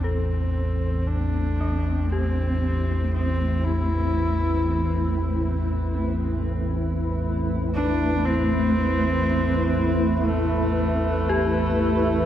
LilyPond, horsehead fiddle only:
\new Staff \with { instrumentName = "Horsehead fiddle" } { \time 4/4 \key a \minor \tempo 4 = 59 c'4 d'4 c'4 c'8 e'8~ | e'4. r2 d'8 | c'2 a2 | }